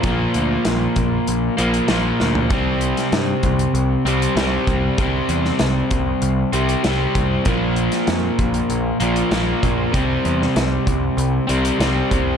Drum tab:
HH |x-x-x-x-x-xxx---|x-xxx-xxx-xxx-x-|x-x-x-x-x-xxx-x-|x-xxx-xxx-xxx-x-|
SD |----o-------o-o-|---oo-------o---|---oo-------o---|---oo-------o---|
FT |---------------o|----------------|----------------|----------------|
BD |o-----o---------|o-----o-------o-|o-----o-------o-|o-----o-------o-|

HH |x-x-x-x-x-xxx-x-|
SD |---oo-------o---|
FT |----------------|
BD |o-----o-------o-|